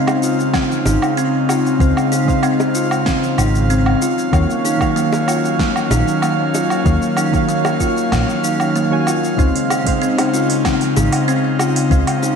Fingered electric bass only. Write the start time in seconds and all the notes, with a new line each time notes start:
0.85 G#1
1.80 C#2
3.38 G#1
4.33 D#2
5.90 A#1
6.86 D#2
8.12 A#1
9.39 C#2
10.97 G#1
11.91 C#2